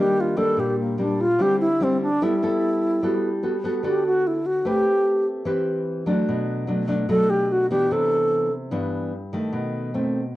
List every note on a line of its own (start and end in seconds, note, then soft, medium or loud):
0.00 0.57 D#3 medium
0.00 0.35 G3 medium
0.00 0.35 A#3 medium
0.00 0.35 D4 medium
0.00 0.22 G4 medium
0.21 0.39 F4 medium
0.37 0.95 G3 medium
0.37 0.95 A#3 medium
0.37 0.95 D4 medium
0.37 0.61 A4 medium
0.57 1.37 A#2 medium
0.57 0.79 G4 medium
0.80 1.03 A#3 soft
0.98 1.25 G3 medium
0.98 1.25 A#3 medium
0.98 1.25 D4 medium
0.98 1.22 D4 medium
1.21 1.43 F4 medium
1.39 2.18 D3 medium
1.39 1.65 G3 medium
1.39 1.66 C4 medium
1.39 1.66 E4 medium
1.39 1.60 G4 loud
1.60 1.85 E4 medium
1.80 2.07 G3 medium
1.80 2.08 C4 medium
1.80 2.01 C4 medium
1.80 2.08 E4 medium
2.02 2.25 D4 medium
2.22 3.00 G3 medium
2.22 2.33 B3 medium
2.22 2.33 E4 medium
2.22 3.44 E4 medium
2.22 2.33 A4 medium
2.42 3.01 B3 medium
2.42 3.01 E4 medium
2.42 3.01 A4 medium
3.03 3.82 G3 medium
3.03 3.29 B3 medium
3.03 3.29 F#4 medium
3.03 3.29 A4 medium
3.43 3.55 B3 medium
3.43 3.55 F#4 medium
3.43 3.55 A4 medium
3.64 3.81 B3 medium
3.64 3.81 F#4 medium
3.64 3.81 A4 medium
3.83 4.63 D3 medium
3.83 4.38 B3 medium
3.83 4.38 F#4 medium
3.83 4.04 G4 medium
3.83 4.39 A4 medium
4.06 4.29 F#4 medium
4.27 4.48 E4 medium
4.46 4.68 F#4 medium
4.65 5.44 A3 medium
4.65 5.43 C4 medium
4.65 5.43 G4 medium
4.65 5.27 G4 medium
4.65 5.44 B4 medium
5.45 6.25 E3 medium
5.45 6.03 C4 medium
5.45 6.04 G4 medium
5.45 6.04 B4 medium
6.06 6.64 F#3 medium
6.06 6.64 A3 medium
6.06 6.65 D4 medium
6.28 7.07 B2 medium
6.67 6.85 F#3 medium
6.67 6.85 A3 medium
6.67 6.85 D4 medium
6.87 7.05 F#3 medium
6.87 7.05 A3 medium
6.87 7.06 D4 medium
7.09 7.88 B2 medium
7.09 7.66 F#3 medium
7.09 7.66 A3 medium
7.09 7.67 D4 medium
7.09 7.31 A4 medium
7.30 7.54 G4 medium
7.52 7.70 F#4 medium
7.70 8.48 E3 medium
7.70 8.48 B3 medium
7.70 8.49 D4 medium
7.70 7.94 G4 medium
7.91 8.70 C3 medium
7.91 8.52 A4 medium
8.71 9.51 G2 medium
8.71 9.12 E3 medium
8.71 9.12 B3 medium
8.71 9.12 D4 medium
9.33 9.90 D#3 medium
9.33 9.91 A3 medium
9.53 10.32 B2 medium
9.94 10.20 D#3 soft
9.94 10.20 A3 medium
9.94 10.20 C4 medium